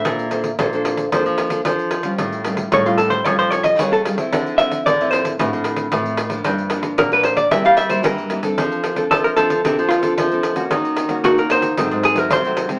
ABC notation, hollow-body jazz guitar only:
X:1
M:4/4
L:1/16
Q:1/4=113
K:F
V:1 name="Hollow-body jazz guitar"
e4- e z8 z3 | z4 ^c ^E A ^B c B c _e c A z2 | z2 e2 d2 c2 z8 | z4 B =B c d e f e c _B3 z |
z4 A B A4 F4 z2 | z4 _G B c4 _A B c3 z |]